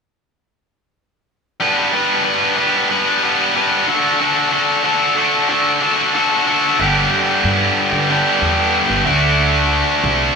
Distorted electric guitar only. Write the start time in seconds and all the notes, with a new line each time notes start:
1.60 G3 B3 D4 B4
1.93 G3 B3 D4 B4
2.24 G3 B3 D4 B4
2.57 G3 B3 D4 B4
2.89 G3 B3 D4 B4
3.23 G3 B3 D4 B4
3.56 G3 B3 D4 B4
3.87 D3 D4 F#4 A4
4.20 D3 D4 F#4 A4
4.52 D3 D4 F#4 A4
4.83 D3 D4 F#4 A4
5.16 D3 D4 F#4 A4
5.48 D3 D4 F#4 A4
5.80 D3 D4 F#4 A4
6.15 D3 D4 F#4 A4
6.47 D3 D4 F#4 A4
6.79 G2 D3 G3 B3 D4 G4
8.09 G2 D3 G3 B3 D4 G4
9.04 D3 A3 D4 F#4